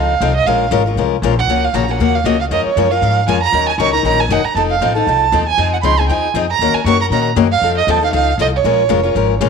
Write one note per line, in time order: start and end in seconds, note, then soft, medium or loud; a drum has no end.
0.00 0.20 C#2 medium
0.00 0.13 F3 medium
0.00 0.13 C4 medium
0.00 0.14 D#4 medium
0.00 0.14 A4 medium
0.00 0.33 F5 medium
0.21 0.45 C2 loud
0.21 0.31 F3 medium
0.21 0.31 C4 loud
0.21 0.31 D#4 medium
0.21 0.31 A4 medium
0.36 0.48 D#5 loud
0.46 0.71 A#1 medium
0.46 0.64 F3 medium
0.46 0.64 G#3 medium
0.46 0.65 C#4 medium
0.46 0.65 F4 medium
0.46 0.65 A#4 medium
0.46 0.72 F5 medium
0.71 0.95 G#1 medium
0.71 0.81 F3 medium
0.71 0.82 G#3 medium
0.71 0.82 C#4 loud
0.71 0.82 F4 medium
0.71 0.82 A#4 loud
0.87 0.97 C#4 medium
0.87 0.97 F4 medium
0.96 1.21 C2 medium
0.96 1.15 F3 medium
0.96 1.15 G#3 medium
0.96 1.16 C#4 medium
0.96 1.16 F4 medium
0.96 1.16 A#4 medium
1.22 1.47 A#1 loud
1.22 1.33 F3 medium
1.22 1.33 G#3 medium
1.22 1.33 C#4 medium
1.22 1.33 F4 loud
1.22 1.33 A#4 loud
1.39 1.66 F#5 medium
1.47 1.73 C#2 medium
1.47 1.67 C#3 medium
1.47 1.67 F3 medium
1.47 1.67 A#3 medium
1.47 1.67 C#4 medium
1.47 1.67 F#4 medium
1.65 1.76 F5 medium
1.73 1.98 A#1 medium
1.73 1.84 C#3 medium
1.73 1.84 F3 medium
1.73 1.84 A#3 medium
1.73 1.84 C#4 medium
1.73 1.85 F#4 medium
1.73 1.92 A#5 medium
1.88 2.00 A#3 soft
1.88 2.00 C#4 medium
1.88 1.99 F#4 medium
1.88 2.00 F#5 medium
1.99 2.24 D#2 medium
1.99 2.18 C#3 medium
1.99 2.18 F3 medium
1.99 2.18 A#3 medium
1.99 2.18 C#4 medium
1.99 2.18 F#4 medium
1.99 2.17 F#5 medium
2.15 2.28 F5 medium
2.24 2.49 C#2 medium
2.24 2.35 C#3 medium
2.24 2.35 F3 medium
2.24 2.35 A#3 medium
2.24 2.36 C#4 medium
2.24 2.36 F#4 loud
2.24 2.40 D#5 medium
2.40 2.45 F5 medium
2.51 2.64 F2 medium
2.51 2.69 F3 medium
2.51 2.69 G#3 medium
2.51 2.69 C#4 medium
2.51 2.69 F4 medium
2.51 2.69 A#4 medium
2.51 2.65 D#5 medium
2.65 2.93 C#5 medium
2.65 muted upright bass stroke soft
2.76 3.01 F#2 medium
2.76 2.87 F3 medium
2.76 2.87 G#3 medium
2.76 2.87 C#4 medium
2.76 2.87 F4 medium
2.76 2.87 A#4 medium
2.91 3.02 C#4 soft
2.91 3.02 F4 soft
2.91 3.02 A#4 medium
2.91 3.28 F5 loud
3.02 3.27 G#2 medium
3.02 3.20 F3 medium
3.02 3.20 G#3 medium
3.02 3.20 C#4 medium
3.02 3.20 F4 medium
3.02 3.21 A#4 medium
3.28 3.52 F2 medium
3.28 3.38 F3 medium
3.28 3.38 G#3 medium
3.28 3.38 C#4 medium
3.28 3.38 F4 medium
3.28 3.38 A#4 medium
3.28 3.42 G#5 medium
3.43 3.66 A#5 loud
3.52 3.77 D#2 medium
3.52 3.71 D#3 medium
3.52 3.71 F#3 medium
3.52 3.71 C#4 medium
3.52 3.71 D#4 medium
3.52 3.71 A#4 medium
3.69 3.79 G#5 medium
3.78 4.02 C#2 medium
3.78 3.89 D#3 medium
3.78 3.89 F#3 medium
3.78 3.89 C#4 medium
3.78 3.89 D#4 medium
3.78 3.89 A#4 medium
3.78 3.93 C#6 medium
3.93 4.04 C#4 soft
3.93 4.04 D#4 medium
3.93 4.04 A#4 medium
3.93 4.04 A#5 medium
4.03 4.28 A#1 medium
4.03 4.22 D#3 medium
4.03 4.23 F#3 medium
4.03 4.23 C#4 medium
4.03 4.23 D#4 medium
4.03 4.23 A#4 medium
4.07 4.21 A#5 loud
4.20 4.33 G#5 medium
4.29 4.43 F#1 medium
4.29 4.40 D#3 medium
4.29 4.40 F#3 medium
4.29 4.40 C#4 medium
4.29 4.41 D#4 loud
4.29 4.41 A#4 medium
4.29 4.46 F#5 medium
4.44 4.55 A#5 loud
4.44 muted upright bass stroke soft
4.55 4.80 F1 medium
4.55 4.74 F3 medium
4.55 4.74 C4 medium
4.55 4.74 D#4 medium
4.55 4.74 A4 medium
4.55 4.62 A5 medium
4.70 4.94 F5 medium
4.81 5.06 A1 medium
4.81 4.91 F3 medium
4.81 4.91 C4 medium
4.81 4.92 D#4 medium
4.81 4.92 A4 medium
4.95 5.07 C4 soft
4.95 5.07 D#4 medium
4.95 5.06 A4 medium
4.95 5.43 A5 loud
5.07 5.32 C2 medium
5.07 5.25 F3 medium
5.07 5.25 C4 medium
5.07 5.25 D#4 medium
5.07 5.26 A4 medium
5.32 5.57 D#2 medium
5.32 5.42 F3 medium
5.32 5.43 C4 medium
5.32 5.43 D#4 medium
5.32 5.43 A4 medium
5.49 5.72 G#5 loud
5.58 5.83 F2 medium
5.58 5.76 F3 medium
5.58 5.76 C4 medium
5.58 5.76 D#4 medium
5.58 5.76 G#4 medium
5.73 5.77 F#5 medium
5.81 6.08 C#2 medium
5.81 5.93 F3 medium
5.81 5.94 C4 medium
5.81 5.94 D#4 medium
5.81 5.94 G#4 medium
5.81 5.86 B5 medium
5.81 6.01 C6 medium
5.98 6.09 C4 soft
5.98 6.09 D#4 medium
5.98 6.09 G#4 medium
5.98 6.07 G#5 medium
6.08 6.34 D#2 medium
6.08 6.27 F3 medium
6.08 6.27 C4 medium
6.08 6.27 D#4 medium
6.08 6.28 G#4 medium
6.08 6.14 G5 medium
6.12 6.25 G#5 medium
6.34 6.58 F2 medium
6.34 6.44 F3 medium
6.34 6.45 C4 medium
6.34 6.45 D#4 medium
6.34 6.45 G#4 medium
6.51 6.76 A#5 medium
6.59 6.73 D#2 medium
6.59 6.78 D#3 medium
6.59 6.79 A#3 medium
6.59 6.79 C#4 medium
6.59 6.79 F#4 medium
6.59 6.79 A#4 medium
6.74 6.86 G#5 medium
6.74 muted upright bass stroke soft
6.84 7.10 F#2 medium
6.84 6.96 D#3 loud
6.84 6.96 A#3 medium
6.84 6.96 C#4 medium
6.84 6.96 F#4 medium
6.84 6.97 A#4 medium
6.84 6.99 C#6 medium
7.00 7.11 C#4 soft
7.00 7.11 F#4 medium
7.00 7.11 A#4 medium
7.00 7.06 A#5 medium
7.10 7.35 A#2 medium
7.10 7.29 D#3 medium
7.10 7.29 A#3 medium
7.10 7.30 C#4 medium
7.10 7.30 F#4 medium
7.10 7.30 A#4 medium
7.10 7.25 A#5 medium
7.36 7.61 F#2 loud
7.36 7.46 D#3 medium
7.36 7.47 A#3 loud
7.36 7.47 C#4 medium
7.36 7.47 F#4 medium
7.36 7.47 A#4 medium
7.52 7.75 F5 loud
7.62 7.87 F2 medium
7.62 7.80 F3 medium
7.62 7.81 C4 medium
7.62 7.81 D#4 medium
7.62 7.81 A4 medium
7.78 7.92 D#5 medium
7.87 8.12 D#2 medium
7.87 7.98 F3 medium
7.87 7.98 C4 medium
7.87 7.98 D#4 loud
7.87 7.98 A4 loud
7.87 8.03 A5 loud
8.01 8.13 C4 medium
8.01 8.13 D#4 medium
8.01 8.12 A4 medium
8.01 8.13 F5 medium
8.13 8.37 C#2 medium
8.13 8.31 F3 medium
8.13 8.31 C4 medium
8.13 8.31 D#4 medium
8.13 8.31 A4 medium
8.13 8.37 F5 loud
8.38 8.63 C2 medium
8.38 8.49 F3 medium
8.38 8.49 C4 medium
8.38 8.49 D#4 medium
8.38 8.49 A4 loud
8.38 8.47 D#5 loud
8.56 9.38 C#5 medium
8.64 8.89 A#1 medium
8.64 8.82 F3 medium
8.64 8.82 G#3 medium
8.64 8.82 C#4 medium
8.64 8.83 F4 medium
8.64 8.83 A#4 medium
8.89 9.14 F1 medium
8.89 8.99 F3 medium
8.89 8.99 G#3 medium
8.89 9.00 C#4 loud
8.89 9.00 F4 medium
8.89 9.00 A#4 loud
9.03 9.15 C#4 medium
9.03 9.15 F4 medium
9.03 9.14 A#4 medium
9.15 9.40 G#1 medium
9.15 9.33 F3 medium
9.15 9.33 G#3 medium
9.15 9.33 C#4 medium
9.15 9.34 F4 medium
9.15 9.34 A#4 medium
9.41 9.49 A#1 medium
9.41 9.49 F3 medium
9.41 9.49 G#3 medium
9.41 9.49 C#4 loud
9.41 9.49 F4 loud
9.41 9.49 A#4 medium